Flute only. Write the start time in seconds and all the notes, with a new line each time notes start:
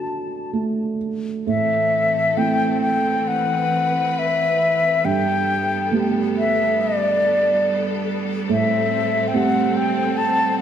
Already playing: A5
1.48 E5
2.37 G5
2.81 G5
3.28 F#5
4.19 E5
5.05 G5
6.38 E5
6.81 D5
8.52 E5
9.28 G5
9.36 F#5
9.76 G5
10.17 A5